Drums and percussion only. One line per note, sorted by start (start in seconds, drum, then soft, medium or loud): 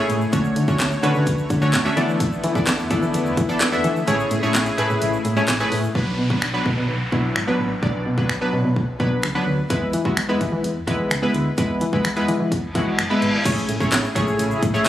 0.09 closed hi-hat medium
0.09 shaker medium
0.21 shaker soft
0.33 kick loud
0.33 closed hi-hat loud
0.33 shaker medium
0.44 shaker medium
0.56 closed hi-hat medium
0.56 shaker medium
0.68 kick loud
0.68 shaker soft
0.80 snare medium
0.80 clap loud
0.80 closed hi-hat loud
0.80 shaker medium
0.91 shaker soft
1.03 closed hi-hat medium
1.03 shaker soft
1.15 shaker medium
1.26 kick medium
1.26 closed hi-hat medium
1.26 shaker medium
1.38 shaker soft
1.50 kick loud
1.50 closed hi-hat medium
1.50 shaker medium
1.62 shaker medium
1.73 snare loud
1.73 clap loud
1.73 closed hi-hat medium
1.73 shaker medium
1.85 shaker soft
1.97 closed hi-hat medium
1.97 shaker medium
2.09 shaker soft
2.20 kick loud
2.20 closed hi-hat loud
2.20 shaker medium
2.32 shaker medium
2.44 closed hi-hat medium
2.44 shaker medium
2.55 kick loud
2.55 shaker soft
2.67 snare loud
2.67 clap loud
2.67 closed hi-hat loud
2.67 shaker medium
2.79 shaker soft
2.91 kick loud
2.91 closed hi-hat medium
2.91 shaker medium
3.02 shaker medium
3.14 closed hi-hat medium
3.14 shaker medium
3.26 shaker soft
3.37 kick loud
3.37 closed hi-hat medium
3.37 shaker medium
3.49 shaker medium
3.60 snare loud
3.60 clap loud
3.60 closed hi-hat loud
3.60 shaker medium
3.72 shaker soft
3.84 closed hi-hat medium
3.84 shaker medium
3.96 shaker medium
4.08 closed hi-hat loud
4.08 shaker medium
4.20 shaker medium
4.31 closed hi-hat medium
4.31 shaker medium
4.43 shaker medium
4.54 snare loud
4.54 clap loud
4.54 closed hi-hat loud
4.54 shaker medium
4.66 closed hi-hat medium
4.66 shaker soft
4.78 closed hi-hat medium
4.78 shaker soft
4.90 shaker medium
5.01 closed hi-hat medium
5.01 shaker medium
5.13 shaker soft
5.25 closed hi-hat medium
5.25 shaker medium
5.37 shaker medium
5.48 snare loud
5.48 clap loud
5.48 closed hi-hat medium
5.48 shaker medium
5.60 shaker soft
5.72 open hi-hat medium
5.72 shaker medium
5.84 shaker medium
5.95 kick loud
6.30 kick medium
6.42 finger snap loud
6.66 kick medium
7.12 kick medium
7.36 finger snap loud
7.83 kick loud
8.18 kick medium
8.29 finger snap loud
8.76 kick medium
9.00 kick medium
9.23 finger snap loud
9.70 kick loud
9.70 closed hi-hat medium
9.93 closed hi-hat medium
10.05 kick medium
10.17 finger snap loud
10.17 closed hi-hat loud
10.41 kick medium
10.41 closed hi-hat medium
10.64 closed hi-hat medium
10.88 kick medium
10.88 closed hi-hat medium
11.11 finger snap loud
11.11 closed hi-hat medium
11.34 closed hi-hat medium
11.58 kick loud
11.58 closed hi-hat loud
11.81 closed hi-hat medium
11.93 kick medium
12.05 finger snap loud
12.05 closed hi-hat loud
12.17 closed hi-hat soft
12.28 closed hi-hat medium
12.52 kick medium
12.52 closed hi-hat medium
12.75 kick medium
12.75 closed hi-hat medium
12.99 finger snap loud
12.99 closed hi-hat medium
13.22 closed hi-hat medium
13.45 kick loud
13.45 closed hi-hat loud
13.45 crash loud
13.45 shaker medium
13.57 shaker medium
13.69 closed hi-hat medium
13.69 shaker medium
13.80 kick medium
13.80 shaker soft
13.92 snare loud
13.92 clap loud
13.92 closed hi-hat loud
13.92 shaker medium
14.04 shaker soft
14.16 kick loud
14.16 closed hi-hat medium
14.16 shaker medium
14.28 shaker medium
14.39 closed hi-hat medium
14.39 shaker medium
14.51 shaker soft
14.63 kick medium
14.63 closed hi-hat medium
14.63 shaker medium
14.74 shaker medium